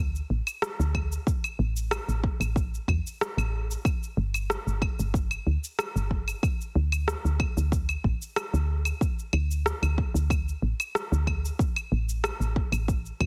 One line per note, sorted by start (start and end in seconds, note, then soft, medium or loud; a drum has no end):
0.00 0.21 D2 loud
0.15 shaker soft
0.30 0.41 A1 medium
0.47 claves medium
0.47 shaker medium
0.62 cross-stick loud
0.62 shaker medium
0.80 1.18 D2 loud
0.80 shaker soft
0.95 kick medium
0.95 claves medium
1.12 shaker medium
1.27 kick loud
1.27 shaker medium
1.44 claves medium
1.44 shaker soft
1.59 1.98 A1 loud
1.77 shaker medium
1.91 cross-stick medium
1.91 claves medium
1.91 shaker medium
2.08 2.28 A1 medium
2.08 shaker soft
2.24 kick loud
2.40 2.79 A1 medium
2.40 claves medium
2.40 shaker medium
2.56 kick loud
2.56 shaker medium
2.74 shaker soft
2.88 2.99 E2 medium
2.88 kick medium
2.88 claves medium
3.07 shaker medium
3.21 cross-stick loud
3.21 shaker medium
3.37 3.76 A1 loud
3.37 claves medium
3.37 shaker soft
3.71 shaker medium
3.85 kick loud
3.85 claves medium
3.85 shaker medium
4.03 shaker soft
4.17 4.57 G1 loud
4.34 claves medium
4.34 shaker medium
4.50 cross-stick medium
4.50 shaker medium
4.67 4.87 G1 medium
4.67 shaker soft
4.82 kick medium
4.82 claves medium
4.99 5.38 G1 medium
4.99 shaker medium
5.14 kick loud
5.14 shaker medium
5.31 claves medium
5.31 shaker soft
5.47 5.57 D2 medium
5.64 shaker medium
5.79 cross-stick medium
5.79 claves medium
5.79 shaker medium
5.96 6.34 G1 medium
5.96 shaker soft
6.11 kick medium
6.28 claves medium
6.28 shaker medium
6.43 kick loud
6.43 claves medium
6.43 shaker soft
6.61 shaker soft
6.75 7.15 D2 medium
6.92 claves medium
6.92 shaker medium
7.08 cross-stick medium
7.08 shaker soft
7.25 7.45 D2 medium
7.25 shaker soft
7.40 kick loud
7.40 claves medium
7.57 7.96 D2 medium
7.57 shaker medium
7.72 kick loud
7.72 shaker medium
7.89 claves medium
7.89 shaker soft
8.04 8.15 A1 medium
8.04 kick medium
8.22 shaker medium
8.36 cross-stick medium
8.36 claves medium
8.36 shaker soft
8.53 8.92 D2 loud
8.53 shaker soft
8.85 claves medium
8.85 shaker medium
9.01 kick loud
9.01 shaker medium
9.19 shaker soft
9.33 9.73 D2 medium
9.33 claves medium
9.51 shaker medium
9.66 cross-stick medium
9.66 shaker medium
9.82 10.02 D2 medium
9.82 claves medium
9.82 shaker soft
9.98 kick loud
10.14 10.53 D2 loud
10.14 shaker medium
10.30 kick loud
10.30 claves medium
10.30 shaker medium
10.48 shaker soft
10.62 10.73 A1 medium
10.80 claves medium
10.80 shaker medium
10.95 cross-stick medium
10.95 shaker medium
11.12 11.50 D2 loud
11.12 shaker soft
11.27 kick medium
11.27 claves medium
11.45 shaker medium
11.59 kick loud
11.59 shaker medium
11.76 claves medium
11.76 shaker soft
11.92 12.31 A1 medium
12.09 shaker medium
12.24 cross-stick medium
12.24 claves medium
12.24 shaker medium
12.40 12.60 A1 medium
12.40 shaker soft
12.56 kick medium
12.72 13.11 A1 loud
12.72 claves medium
12.72 shaker medium
12.88 kick loud
12.88 shaker soft
13.06 shaker soft
13.21 13.26 E2 medium
13.21 kick medium
13.21 claves medium